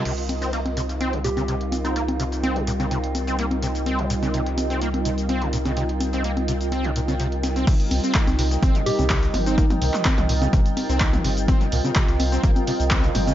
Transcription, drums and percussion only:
0.05 closed hi-hat, crash, shaker
0.18 closed hi-hat
0.29 closed hi-hat, high conga, shaker
0.42 closed hi-hat, shaker
0.53 closed hi-hat, shaker
0.66 snare, closed hi-hat, high conga
0.77 closed hi-hat, shaker
0.89 snare, closed hi-hat, shaker
1.01 closed hi-hat, high conga, shaker
1.13 closed hi-hat
1.24 closed hi-hat, shaker
1.37 closed hi-hat, high conga, shaker
1.48 closed hi-hat, open hi-hat, shaker
1.61 closed hi-hat
1.72 closed hi-hat, high conga, shaker
1.85 closed hi-hat, shaker
1.96 closed hi-hat, shaker
2.08 closed hi-hat, high conga
2.20 closed hi-hat, shaker
2.32 snare, closed hi-hat, shaker
2.44 closed hi-hat, high conga, shaker
2.56 closed hi-hat
2.67 closed hi-hat, shaker
2.80 closed hi-hat, high conga, shaker
2.91 closed hi-hat, shaker
3.04 closed hi-hat
3.15 closed hi-hat, high conga, shaker
3.27 closed hi-hat, shaker
3.39 closed hi-hat, shaker
3.51 closed hi-hat, high conga
3.62 snare, closed hi-hat, shaker
3.75 closed hi-hat, shaker
3.86 closed hi-hat, high conga, shaker
3.99 closed hi-hat
4.10 closed hi-hat, shaker
4.23 closed hi-hat, high conga, shaker
4.34 closed hi-hat, shaker
4.46 snare, closed hi-hat
4.58 closed hi-hat, high conga, shaker
4.70 snare, closed hi-hat, shaker
4.82 closed hi-hat, shaker
4.94 closed hi-hat, high conga
5.05 closed hi-hat, shaker
5.18 closed hi-hat, shaker
5.29 closed hi-hat, open hi-hat, high conga, shaker
5.42 closed hi-hat
5.53 closed hi-hat, shaker
5.65 closed hi-hat, high conga, shaker
5.77 closed hi-hat, shaker
5.89 closed hi-hat
6.01 closed hi-hat, high conga, shaker
6.13 snare, closed hi-hat, shaker
6.24 closed hi-hat, shaker
6.37 closed hi-hat, high conga
6.48 closed hi-hat, shaker
6.61 closed hi-hat, shaker
6.72 closed hi-hat, high conga, shaker
6.84 closed hi-hat
6.96 closed hi-hat, shaker
7.08 closed hi-hat, high conga, shaker
7.20 closed hi-hat, shaker
7.32 closed hi-hat
7.43 snare, closed hi-hat, high conga, shaker
7.56 closed hi-hat, shaker
7.67 kick, closed hi-hat, crash, shaker
7.80 closed hi-hat, shaker
7.91 closed hi-hat, open hi-hat, high conga
8.04 closed hi-hat, shaker
8.14 kick, snare, clap, closed hi-hat, shaker
8.27 snare, closed hi-hat, high conga, shaker
8.39 closed hi-hat, open hi-hat
8.51 snare, closed hi-hat, shaker
8.63 kick, closed hi-hat, high conga, shaker
8.75 closed hi-hat, shaker
8.86 closed hi-hat, open hi-hat
8.99 closed hi-hat, high conga, shaker
9.10 kick, snare, clap, closed hi-hat, open hi-hat, shaker
9.23 closed hi-hat, shaker
9.34 closed hi-hat, open hi-hat, mid tom, high conga
9.46 closed hi-hat, shaker
9.58 kick, closed hi-hat, shaker
9.70 closed hi-hat, mid tom, high conga, shaker
9.82 closed hi-hat, open hi-hat
9.94 snare, clap, closed hi-hat, mid tom, shaker
10.05 kick, snare, clap, closed hi-hat, high conga, shaker
10.18 closed hi-hat, mid tom, shaker
10.29 closed hi-hat, open hi-hat
10.42 closed hi-hat, high conga, shaker
10.53 kick, closed hi-hat, shaker
10.66 closed hi-hat, shaker
10.77 closed hi-hat, open hi-hat, high conga
10.89 closed hi-hat, shaker
11.00 kick, snare, clap, closed hi-hat, shaker
11.13 closed hi-hat, mid tom, high conga, shaker
11.24 snare, closed hi-hat, open hi-hat
11.37 closed hi-hat, shaker
11.48 kick, closed hi-hat, high conga, shaker
11.61 closed hi-hat, shaker
11.72 closed hi-hat, open hi-hat
11.85 closed hi-hat, high conga, shaker
11.95 kick, snare, clap, closed hi-hat, shaker
12.08 snare, closed hi-hat, shaker
12.20 closed hi-hat, open hi-hat, high conga
12.32 snare, closed hi-hat, shaker
12.43 kick, closed hi-hat, shaker
12.56 closed hi-hat, high conga, shaker
12.67 closed hi-hat, open hi-hat
12.80 closed hi-hat, shaker
12.91 kick, snare, clap, closed hi-hat, open hi-hat, high conga, shaker
13.04 closed hi-hat, shaker
13.15 closed hi-hat, open hi-hat, mid tom
13.27 closed hi-hat, high conga, shaker

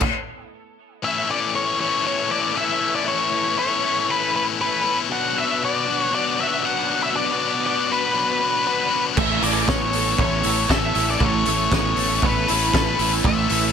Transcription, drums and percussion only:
0.00 kick, crash
9.17 kick, crash
9.43 open hi-hat
9.68 kick, snare
9.93 open hi-hat
10.18 kick
10.44 open hi-hat
10.69 kick, snare
10.95 open hi-hat
11.20 kick
11.46 open hi-hat
11.72 kick, snare
11.97 open hi-hat
12.22 kick
12.48 open hi-hat
12.73 kick, snare
12.99 open hi-hat
13.24 kick
13.50 open hi-hat

